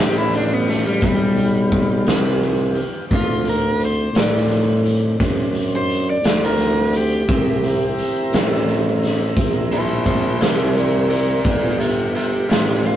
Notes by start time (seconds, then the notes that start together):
Already playing: A1 B3 F4 G4
0.00 G4
0.18 E4
0.32 D4, closed hi-hat
0.54 B3
0.68 A3, snare, closed hi-hat
0.87 G3
1.02 B1 G3, kick, snare, closed hi-hat
1.37 closed hi-hat
1.72 kick, closed hi-hat
2.05 C2, snare, closed hi-hat
2.41 closed hi-hat
2.75 closed hi-hat
3.08 D2 C4 D4, kick, closed hi-hat
3.14 F4
3.45 closed hi-hat
3.50 A#4
3.80 closed hi-hat
3.85 C5
4.13 A2, snare, closed hi-hat
4.19 D5
4.51 closed hi-hat
4.85 closed hi-hat
5.20 F#2, kick, snare, closed hi-hat
5.55 closed hi-hat
5.76 C5
5.89 closed hi-hat
6.10 D5
6.22 D2, snare, closed hi-hat
6.45 A#4
6.58 closed hi-hat
6.93 closed hi-hat
6.97 G4
7.28 C2 C4 E4 A#4, kick, closed hi-hat
7.64 closed hi-hat
7.98 closed hi-hat
8.30 A1, snare, closed hi-hat
8.68 closed hi-hat
9.03 snare, closed hi-hat
9.37 A#1, kick, snare, closed hi-hat
9.72 E4 C5, closed hi-hat
10.06 E4 C5, kick, closed hi-hat
10.40 C2 E4 C5, snare, closed hi-hat
10.75 A#4 D5, closed hi-hat
11.10 A#4 D5, closed hi-hat
11.44 G1 B3 F4 G4 D5, kick, closed hi-hat
11.79 G4 E5, closed hi-hat
12.15 G4 E5, closed hi-hat
12.48 A1 G4 E5, closed hi-hat
12.52 snare
12.85 F5, closed hi-hat